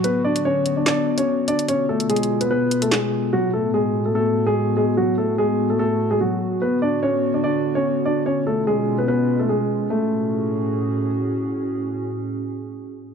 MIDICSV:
0, 0, Header, 1, 4, 480
1, 0, Start_track
1, 0, Key_signature, 3, "minor"
1, 0, Tempo, 410959
1, 48, Time_signature, 4, 2, 24, 8
1, 15351, End_track
2, 0, Start_track
2, 0, Title_t, "Grand piano"
2, 0, Program_c, 0, 0
2, 47, Note_on_c, 0, 71, 87
2, 57, Note_on_c, 0, 59, 64
2, 238, Note_off_c, 0, 71, 0
2, 244, Note_off_c, 0, 59, 0
2, 286, Note_on_c, 0, 74, 82
2, 295, Note_on_c, 0, 62, 64
2, 477, Note_off_c, 0, 74, 0
2, 483, Note_off_c, 0, 62, 0
2, 528, Note_on_c, 0, 73, 87
2, 537, Note_on_c, 0, 61, 67
2, 873, Note_off_c, 0, 73, 0
2, 878, Note_off_c, 0, 61, 0
2, 894, Note_on_c, 0, 74, 64
2, 904, Note_on_c, 0, 62, 55
2, 984, Note_off_c, 0, 74, 0
2, 990, Note_off_c, 0, 62, 0
2, 1006, Note_on_c, 0, 74, 86
2, 1016, Note_on_c, 0, 62, 68
2, 1352, Note_off_c, 0, 74, 0
2, 1357, Note_off_c, 0, 62, 0
2, 1374, Note_on_c, 0, 73, 84
2, 1383, Note_on_c, 0, 61, 61
2, 1706, Note_off_c, 0, 73, 0
2, 1711, Note_off_c, 0, 61, 0
2, 1729, Note_on_c, 0, 74, 83
2, 1738, Note_on_c, 0, 62, 62
2, 1918, Note_off_c, 0, 74, 0
2, 1924, Note_off_c, 0, 62, 0
2, 1968, Note_on_c, 0, 73, 81
2, 1977, Note_on_c, 0, 61, 61
2, 2158, Note_off_c, 0, 73, 0
2, 2163, Note_off_c, 0, 61, 0
2, 2208, Note_on_c, 0, 69, 79
2, 2218, Note_on_c, 0, 57, 65
2, 2398, Note_off_c, 0, 69, 0
2, 2404, Note_off_c, 0, 57, 0
2, 2448, Note_on_c, 0, 68, 81
2, 2458, Note_on_c, 0, 56, 68
2, 2793, Note_off_c, 0, 68, 0
2, 2798, Note_off_c, 0, 56, 0
2, 2814, Note_on_c, 0, 71, 75
2, 2823, Note_on_c, 0, 59, 57
2, 2904, Note_off_c, 0, 71, 0
2, 2909, Note_off_c, 0, 59, 0
2, 2928, Note_on_c, 0, 71, 90
2, 2937, Note_on_c, 0, 59, 64
2, 3273, Note_off_c, 0, 71, 0
2, 3278, Note_off_c, 0, 59, 0
2, 3293, Note_on_c, 0, 69, 73
2, 3302, Note_on_c, 0, 57, 62
2, 3383, Note_off_c, 0, 69, 0
2, 3388, Note_off_c, 0, 57, 0
2, 3406, Note_on_c, 0, 68, 69
2, 3415, Note_on_c, 0, 56, 49
2, 3858, Note_off_c, 0, 68, 0
2, 3863, Note_off_c, 0, 56, 0
2, 3889, Note_on_c, 0, 66, 84
2, 3898, Note_on_c, 0, 54, 63
2, 4079, Note_off_c, 0, 66, 0
2, 4084, Note_off_c, 0, 54, 0
2, 4129, Note_on_c, 0, 69, 76
2, 4138, Note_on_c, 0, 57, 67
2, 4318, Note_off_c, 0, 69, 0
2, 4324, Note_off_c, 0, 57, 0
2, 4368, Note_on_c, 0, 68, 81
2, 4377, Note_on_c, 0, 56, 66
2, 4713, Note_off_c, 0, 68, 0
2, 4718, Note_off_c, 0, 56, 0
2, 4736, Note_on_c, 0, 69, 66
2, 4745, Note_on_c, 0, 57, 53
2, 4825, Note_off_c, 0, 69, 0
2, 4830, Note_off_c, 0, 57, 0
2, 4848, Note_on_c, 0, 69, 91
2, 4857, Note_on_c, 0, 57, 71
2, 5193, Note_off_c, 0, 69, 0
2, 5198, Note_off_c, 0, 57, 0
2, 5216, Note_on_c, 0, 68, 85
2, 5226, Note_on_c, 0, 56, 60
2, 5547, Note_off_c, 0, 68, 0
2, 5552, Note_off_c, 0, 56, 0
2, 5569, Note_on_c, 0, 68, 80
2, 5578, Note_on_c, 0, 56, 63
2, 5759, Note_off_c, 0, 68, 0
2, 5764, Note_off_c, 0, 56, 0
2, 5809, Note_on_c, 0, 66, 76
2, 5819, Note_on_c, 0, 54, 67
2, 5999, Note_off_c, 0, 66, 0
2, 6004, Note_off_c, 0, 54, 0
2, 6048, Note_on_c, 0, 69, 76
2, 6057, Note_on_c, 0, 57, 62
2, 6238, Note_off_c, 0, 69, 0
2, 6244, Note_off_c, 0, 57, 0
2, 6288, Note_on_c, 0, 68, 88
2, 6298, Note_on_c, 0, 56, 65
2, 6633, Note_off_c, 0, 68, 0
2, 6638, Note_off_c, 0, 56, 0
2, 6656, Note_on_c, 0, 69, 70
2, 6665, Note_on_c, 0, 57, 59
2, 6745, Note_off_c, 0, 69, 0
2, 6751, Note_off_c, 0, 57, 0
2, 6767, Note_on_c, 0, 69, 91
2, 6776, Note_on_c, 0, 57, 71
2, 7112, Note_off_c, 0, 69, 0
2, 7117, Note_off_c, 0, 57, 0
2, 7134, Note_on_c, 0, 68, 74
2, 7143, Note_on_c, 0, 56, 57
2, 7224, Note_off_c, 0, 68, 0
2, 7229, Note_off_c, 0, 56, 0
2, 7249, Note_on_c, 0, 66, 72
2, 7258, Note_on_c, 0, 54, 54
2, 7699, Note_off_c, 0, 66, 0
2, 7704, Note_off_c, 0, 54, 0
2, 7729, Note_on_c, 0, 71, 83
2, 7738, Note_on_c, 0, 59, 64
2, 7918, Note_off_c, 0, 71, 0
2, 7924, Note_off_c, 0, 59, 0
2, 7966, Note_on_c, 0, 74, 80
2, 7975, Note_on_c, 0, 62, 64
2, 8157, Note_off_c, 0, 74, 0
2, 8163, Note_off_c, 0, 62, 0
2, 8208, Note_on_c, 0, 73, 86
2, 8217, Note_on_c, 0, 61, 65
2, 8553, Note_off_c, 0, 73, 0
2, 8558, Note_off_c, 0, 61, 0
2, 8574, Note_on_c, 0, 74, 64
2, 8583, Note_on_c, 0, 62, 53
2, 8664, Note_off_c, 0, 74, 0
2, 8669, Note_off_c, 0, 62, 0
2, 8687, Note_on_c, 0, 74, 88
2, 8696, Note_on_c, 0, 62, 65
2, 9032, Note_off_c, 0, 74, 0
2, 9037, Note_off_c, 0, 62, 0
2, 9054, Note_on_c, 0, 73, 81
2, 9063, Note_on_c, 0, 61, 62
2, 9386, Note_off_c, 0, 73, 0
2, 9391, Note_off_c, 0, 61, 0
2, 9408, Note_on_c, 0, 74, 80
2, 9417, Note_on_c, 0, 62, 59
2, 9598, Note_off_c, 0, 74, 0
2, 9604, Note_off_c, 0, 62, 0
2, 9647, Note_on_c, 0, 73, 79
2, 9657, Note_on_c, 0, 61, 61
2, 9837, Note_off_c, 0, 73, 0
2, 9843, Note_off_c, 0, 61, 0
2, 9889, Note_on_c, 0, 69, 81
2, 9898, Note_on_c, 0, 57, 62
2, 10079, Note_off_c, 0, 69, 0
2, 10084, Note_off_c, 0, 57, 0
2, 10128, Note_on_c, 0, 68, 82
2, 10138, Note_on_c, 0, 56, 67
2, 10473, Note_off_c, 0, 68, 0
2, 10478, Note_off_c, 0, 56, 0
2, 10493, Note_on_c, 0, 71, 72
2, 10503, Note_on_c, 0, 59, 56
2, 10583, Note_off_c, 0, 71, 0
2, 10589, Note_off_c, 0, 59, 0
2, 10608, Note_on_c, 0, 71, 88
2, 10617, Note_on_c, 0, 59, 64
2, 10953, Note_off_c, 0, 71, 0
2, 10958, Note_off_c, 0, 59, 0
2, 10972, Note_on_c, 0, 69, 71
2, 10982, Note_on_c, 0, 57, 58
2, 11062, Note_off_c, 0, 69, 0
2, 11068, Note_off_c, 0, 57, 0
2, 11086, Note_on_c, 0, 68, 67
2, 11094, Note_on_c, 0, 56, 49
2, 11538, Note_off_c, 0, 68, 0
2, 11543, Note_off_c, 0, 56, 0
2, 11566, Note_on_c, 0, 57, 81
2, 12960, Note_off_c, 0, 57, 0
2, 15351, End_track
3, 0, Start_track
3, 0, Title_t, "Ambient pad"
3, 0, Program_c, 1, 92
3, 0, Note_on_c, 1, 66, 95
3, 49, Note_on_c, 1, 50, 83
3, 49, Note_on_c, 1, 59, 77
3, 1922, Note_off_c, 1, 66, 0
3, 1949, Note_off_c, 1, 50, 0
3, 1949, Note_off_c, 1, 59, 0
3, 1968, Note_on_c, 1, 47, 86
3, 1968, Note_on_c, 1, 59, 76
3, 1968, Note_on_c, 1, 65, 96
3, 3869, Note_off_c, 1, 47, 0
3, 3869, Note_off_c, 1, 65, 0
3, 3887, Note_on_c, 1, 45, 83
3, 3887, Note_on_c, 1, 66, 93
3, 7681, Note_off_c, 1, 59, 0
3, 7689, Note_off_c, 1, 45, 0
3, 7689, Note_off_c, 1, 66, 0
3, 7728, Note_on_c, 1, 50, 80
3, 7728, Note_on_c, 1, 59, 79
3, 7728, Note_on_c, 1, 66, 92
3, 9629, Note_off_c, 1, 50, 0
3, 9629, Note_off_c, 1, 59, 0
3, 9629, Note_off_c, 1, 66, 0
3, 9647, Note_on_c, 1, 47, 82
3, 9647, Note_on_c, 1, 61, 75
3, 9648, Note_on_c, 1, 56, 77
3, 9648, Note_on_c, 1, 65, 95
3, 11548, Note_off_c, 1, 47, 0
3, 11548, Note_off_c, 1, 61, 0
3, 11549, Note_off_c, 1, 56, 0
3, 11549, Note_off_c, 1, 65, 0
3, 11567, Note_on_c, 1, 45, 84
3, 11568, Note_on_c, 1, 61, 76
3, 11568, Note_on_c, 1, 66, 94
3, 11568, Note_on_c, 1, 68, 75
3, 15351, Note_off_c, 1, 45, 0
3, 15351, Note_off_c, 1, 61, 0
3, 15351, Note_off_c, 1, 66, 0
3, 15351, Note_off_c, 1, 68, 0
3, 15351, End_track
4, 0, Start_track
4, 0, Title_t, "Drums"
4, 48, Note_on_c, 9, 42, 75
4, 165, Note_off_c, 9, 42, 0
4, 417, Note_on_c, 9, 42, 77
4, 534, Note_off_c, 9, 42, 0
4, 766, Note_on_c, 9, 42, 68
4, 883, Note_off_c, 9, 42, 0
4, 1008, Note_on_c, 9, 38, 120
4, 1018, Note_on_c, 9, 39, 97
4, 1125, Note_off_c, 9, 38, 0
4, 1134, Note_off_c, 9, 39, 0
4, 1374, Note_on_c, 9, 42, 78
4, 1491, Note_off_c, 9, 42, 0
4, 1727, Note_on_c, 9, 42, 83
4, 1844, Note_off_c, 9, 42, 0
4, 1857, Note_on_c, 9, 42, 80
4, 1968, Note_off_c, 9, 42, 0
4, 1968, Note_on_c, 9, 42, 77
4, 2085, Note_off_c, 9, 42, 0
4, 2337, Note_on_c, 9, 42, 78
4, 2448, Note_off_c, 9, 42, 0
4, 2448, Note_on_c, 9, 42, 64
4, 2528, Note_off_c, 9, 42, 0
4, 2528, Note_on_c, 9, 42, 64
4, 2608, Note_off_c, 9, 42, 0
4, 2608, Note_on_c, 9, 42, 64
4, 2724, Note_off_c, 9, 42, 0
4, 2813, Note_on_c, 9, 42, 70
4, 2930, Note_off_c, 9, 42, 0
4, 3169, Note_on_c, 9, 42, 86
4, 3286, Note_off_c, 9, 42, 0
4, 3294, Note_on_c, 9, 42, 89
4, 3407, Note_on_c, 9, 38, 116
4, 3410, Note_off_c, 9, 42, 0
4, 3417, Note_on_c, 9, 39, 94
4, 3524, Note_off_c, 9, 38, 0
4, 3534, Note_off_c, 9, 39, 0
4, 15351, End_track
0, 0, End_of_file